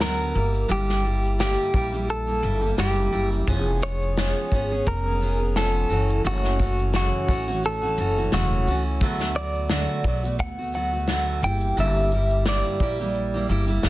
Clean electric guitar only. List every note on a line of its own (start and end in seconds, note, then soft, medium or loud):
0.01 0.71 A#4 medium
0.72 1.39 G4 medium
1.41 2.10 G4 medium
2.10 2.75 A4 medium
2.80 3.29 G4 medium
3.83 4.87 C#5 loud
4.88 5.57 A#4 loud
5.57 6.21 A4 medium
6.27 6.95 F#4 medium
6.96 7.65 F#4 medium
7.66 8.33 A4 medium
8.34 8.83 F#4 medium
9.36 10.35 D5 medium
10.40 10.74 F#5 loud
10.75 11.44 F#5 medium
11.44 11.79 G5 loud
11.80 12.43 E5 loud
12.49 13.47 D5 medium